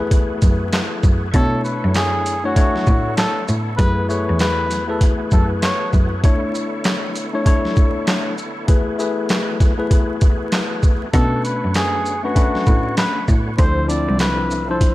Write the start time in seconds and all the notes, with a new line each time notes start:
Already playing: E2 E3 A3 B3 F#4 G#4
0.00 E4 G#4 B4
0.11 kick, closed hi-hat
0.42 F#2, kick, closed hi-hat, shaker
0.72 snare, clap, closed hi-hat
1.03 F#2, kick, shaker
1.31 B2 D3 A3 B3 D4 E4 A4 C#5, kick, closed hi-hat
1.36 C#5
1.64 B4, shaker
1.84 F#2
1.94 G#4, snare, clap, closed hi-hat
2.26 closed hi-hat, shaker
2.43 A3 D4 E4 F#4 C#5
2.55 A3 D4 E4 C#5, kick, closed hi-hat
2.76 snare
2.87 A2, kick, shaker
3.17 A4, snare, clap, closed hi-hat
3.48 A2, shaker
3.77 F#2 E3 A3 E4 F#4 G#4 B4, kick, closed hi-hat
4.09 A3 E4 G#4 B4 C#5, shaker
4.29 E2
4.39 B4, snare, clap, closed hi-hat
4.70 snare, closed hi-hat, shaker
4.88 A3 E4 G#4 A4 B4
5.01 kick, closed hi-hat
5.31 F#2 A4, kick, shaker
5.62 C#5, snare, clap, closed hi-hat
5.93 F#2, kick, shaker
6.23 D3 A3 D4 E4 C#5, kick, closed hi-hat
6.55 shaker
6.84 snare, clap, closed hi-hat
7.16 closed hi-hat, shaker
7.33 A3 D4 E4 C#5
7.45 A3 D4 E4 C#5, kick, closed hi-hat
7.65 snare
7.76 kick, shaker
8.07 snare, clap, closed hi-hat
8.38 shaker
8.67 E3 A3 E4 F#4 G#4 B4, kick, closed hi-hat
8.99 A3 E4 G#4 B4, shaker
9.29 snare, clap, closed hi-hat
9.60 kick, snare, closed hi-hat, shaker
9.77 A3 E4 G#4 B4
9.91 kick, closed hi-hat
10.21 kick, closed hi-hat, shaker
10.52 snare, clap, closed hi-hat
10.83 kick, shaker
11.13 B2 D3 A3 B3 C#4 D4 F#4 A4 B4 C#5, kick, closed hi-hat
11.45 B4, closed hi-hat, shaker
11.64 F#2
11.74 G#4, snare, clap, closed hi-hat
12.06 shaker
12.23 A3 C#4 D4 F#4 B4
12.35 A3 C#4 D4 B4, kick, closed hi-hat
12.55 snare
12.66 A2, kick, shaker
12.97 B4, snare, clap, closed hi-hat
13.28 A2, kick, shaker
13.57 D2 F3 A3 C4 D4 E4 C5, kick, closed hi-hat
13.88 F3 C4 D4 E4 D5, closed hi-hat, shaker
14.09 C2
14.19 B4, snare, clap, closed hi-hat
14.51 shaker
14.69 F3 D4 E4 A4 C5
14.81 kick, closed hi-hat